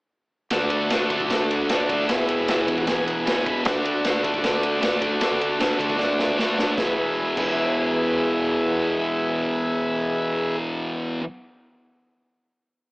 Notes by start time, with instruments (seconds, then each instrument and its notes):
0.50 distorted electric guitar D3 A3 D4, transistor combo organ F#4 A4 D5, kick, snare, ride
0.70 ride
0.89 fingered electric bass B2, distorted electric guitar D3 A3 D4, snare, ride
1.10 distorted electric guitar D3 A3 D4, kick, ride
1.20 kick
1.30 distorted electric guitar D3 A3 D4, kick, snare, ride
1.50 fingered electric bass D2, ride
1.69 fingered electric bass D2, distorted electric guitar D3 A3 D4, snare, ride
1.89 distorted electric guitar D3 A3 D4, kick, ride
2.08 distorted electric guitar E2 B2 E3, transistor combo organ G#4 B4 E5, kick, snare, ride
2.29 ride
2.48 fingered electric bass D2, distorted electric guitar E2 B2 E3, snare, ride
2.67 distorted electric guitar E2 B2 E3, transistor combo organ E5, kick, ride
2.78 transistor combo organ F#5, kick
2.86 distorted electric guitar E2 B2 E3, transistor combo organ G#5, kick, snare, ride
3.06 fingered electric bass E1, transistor combo organ F#5, ride
3.25 fingered electric bass E1, distorted electric guitar E2 B2 E3, transistor combo organ G#5, snare, ride
3.46 distorted electric guitar E2 B2 E3, transistor combo organ B5, kick, ride
3.65 fingered electric bass D2, distorted electric guitar D3 A3 D4, transistor combo organ F#4 A4 D5, kick, snare, ride
3.85 ride
4.05 fingered electric bass B2, distorted electric guitar D3 A3 D4, snare, ride
4.23 distorted electric guitar D3 A3 D4, kick, ride
4.34 kick
4.43 distorted electric guitar D3 A3 D4, kick, snare, ride
4.63 fingered electric bass D2, ride
4.81 fingered electric bass D2, distorted electric guitar D3 A3 D4, snare, ride
5.01 distorted electric guitar D3 A3 D4, kick, ride
5.21 fingered electric bass D2, distorted electric guitar D3 A3 D4, kick, snare, ride
5.41 ride
5.59 fingered electric bass B2, distorted electric guitar D3 A3 D4, snare, ride
5.77 distorted electric guitar D3 A3 D4, kick, ride
5.90 kick
5.98 distorted electric guitar D3 A3 D4, kick, snare
6.19 fingered electric bass D2, snare
6.37 fingered electric bass F#2, distorted electric guitar D3 A3 D4, snare
6.58 distorted electric guitar D3 A3 D4, snare
6.77 distorted electric guitar E2 B2 E3, transistor combo organ G#4 B4 E5, kick, snare
7.36 distorted electric guitar E2 B2, kick, crash
7.41 distorted electric guitar E3